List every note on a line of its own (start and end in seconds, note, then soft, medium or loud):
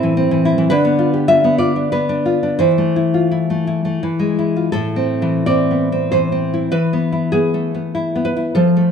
0.00 0.67 A2 medium
0.00 0.30 E3 medium
0.00 0.16 C4 medium
0.00 0.44 E4 medium
0.00 0.29 F4 medium
0.00 0.39 A4 medium
0.17 0.72 C4 medium
0.31 0.57 E3 medium
0.45 0.72 E4 medium
0.58 0.71 E3 medium
0.70 2.57 D3 medium
0.70 1.13 B4 loud
0.85 1.43 B3 medium
0.99 1.27 F4 medium
1.14 2.08 G4 soft
1.28 1.58 F4 medium
1.28 1.58 E5 loud
1.44 1.91 B3 medium
1.58 1.76 F4 medium
1.58 1.89 D5 medium
1.76 2.08 D4 medium
1.92 2.61 B3 medium
1.92 2.58 B4 medium
2.09 2.42 D4 medium
2.26 2.61 F4 medium
2.43 2.61 D4 medium
2.59 3.99 E3 medium
2.59 3.98 C5 medium
2.78 3.49 A3 soft
2.96 3.30 E4 medium
3.14 4.03 F4 soft
3.31 3.66 E4 medium
3.50 3.84 A3 soft
3.67 4.03 E4 medium
3.85 4.03 A3 medium
4.03 4.72 E3 medium
4.19 4.73 G#3 medium
4.39 4.74 E4 soft
4.56 4.72 F4 soft
4.72 6.69 A2 medium
4.72 5.44 A4 medium
4.96 5.46 C4 medium
5.22 6.11 E3 medium
5.46 5.91 C4 medium
5.46 6.09 D5 medium
5.71 6.63 B3 soft
5.92 6.31 C4 medium
6.12 6.71 E3 medium
6.12 6.70 C5 medium
6.32 6.73 C4 soft
6.54 6.73 E4 medium
6.72 8.50 E3 medium
6.72 7.30 B4 medium
6.93 7.32 B3 medium
7.12 7.93 E4 soft
7.32 7.73 B3 medium
7.32 8.20 G#4 medium
7.54 8.45 A3 soft
7.74 8.14 B3 soft
7.95 8.35 E4 medium
8.15 8.55 B3 medium
8.25 8.54 B4 medium
8.37 8.56 E4 soft
8.55 8.92 F3 medium
8.55 8.92 A4 medium
8.77 8.92 A3 soft